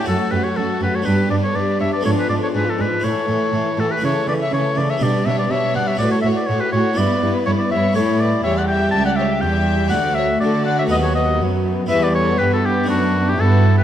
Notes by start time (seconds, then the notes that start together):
0.03 F#2 A3 C#4 F#4
0.07 F#2 A3 F#4 A4
0.31 F#2 A3 F#4 G4 B4
0.44 A4 C#5
0.56 F#2 A3 F#4 A4
0.81 F#2 A3 F#4 G4 B4
0.94 A4 C#5
1.02 G2 B3 D4 B4
1.06 G3 G4
1.30 G2 G3 D4 B4 D5
1.43 A4 C#5
1.54 G2 G3 D4 B4 D5
1.79 G2 G3 D4 C#5 E5
1.93 B4 D5
2.01 B3 D4 F4 A4
2.05 G#2 F3 C#5
2.16 G#4 B4
2.28 G#2 F3 D4 B4 D5
2.40 A4 C#5
2.53 G#2 F3 D4 G#4 B4
2.66 F4 A4
2.78 G#2 F3 D4 G#4 B4
3.00 A2 A3 E4 A4
3.04 A2 E3 A3 C#5
3.28 A2 E3 A3
3.53 A2 E3 A3
3.77 A2 E3 A3 F#4 A4
3.89 G4 B4
3.97 A3 E4
4.02 C#3 E3 A3 A4 C#5
4.27 C#3 E3 A3 B4 D5
4.40 C#5 E5
4.51 C#3 E3 A3 A4 C#5
4.75 C#3 E3 A3 B4 D5
4.90 C#5 E5
4.97 B3 D4 G4
5.01 B2 G3 B4 D5
5.25 B2 G3 D4 C#5 E5
5.39 B4 D5
5.50 B2 G3 D4 C#5 E5
5.74 B2 G3 D4 D5 F#5
5.87 C#5 E5
5.95 A2 C#4 F#4 A4 D5
6.00 A2 A3 F#4 B4
6.11 A4 C#5
6.22 A2 F#4 C#5 E5
6.26 A3
6.36 B4 D5
6.46 A2 F#4 A4 C#5
6.50 A3
6.60 G4 B4
6.72 A2 A3 F#4 A4 C#5
6.93 G2 B3 E4 B4 D5
6.98 G2 B3 B4
7.22 G2 B3 E4
7.45 G2 B3 E4 A4 C#5
7.59 B4 D5
7.70 G2 B3 E4 C#5 E5
7.93 A2 A3 E4 G4 A4 C#5
7.97 A2
8.19 B4 D5
8.44 E2 G3 G4 C#5 E5
8.57 D5 F#5
8.68 E5 G5
8.91 C#2 E5 A5
9.05 D5 F#5
9.16 C#5 E5
9.41 E2 G3 E5 G5
9.88 A3 D4 F#4 F#5
9.92 D2 A3 F#4 D5
10.14 C#5 E5
10.40 D3 A3 F#4 A4 D5
10.65 D5 F#5
10.77 C#5 E5
10.87 D#2 A3 B3 F#4 B4
10.91 D#2 F#3 D#5
11.02 A4 C#5
11.15 B4 D#5
11.40 F#2 B3
11.86 E2 B3 E4 B4 E5
11.91 G3
12.01 B4 D5
12.14 A4 C#5
12.38 G2 B3 G4 B4
12.50 F#4 A4
12.63 E4 G4
12.84 A3 D4
12.88 F#2 D4 F#4
13.26 E4 G4
13.38 G2 B3 E4 F#4 A4
13.77 G4 B4